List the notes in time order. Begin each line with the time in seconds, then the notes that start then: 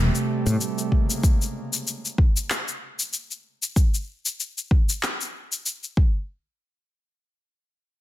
Already playing: C3 G3 A3
0.15 cabasa
0.46 A2, cabasa
0.61 cabasa
0.79 cabasa
0.92 kick
1.10 cabasa
1.23 kick, cabasa
1.42 cabasa
1.73 cabasa
1.87 cabasa
2.05 cabasa
2.18 kick
2.37 cabasa
2.50 clap, cabasa
2.68 cabasa
3.00 cabasa
3.13 cabasa
3.31 cabasa
3.63 cabasa
3.76 kick, cabasa
3.94 cabasa
4.26 cabasa
4.40 cabasa
4.58 cabasa
4.71 kick
4.89 cabasa
5.03 clap, cabasa
5.21 cabasa
5.52 cabasa
5.66 cabasa
5.83 cabasa
5.97 kick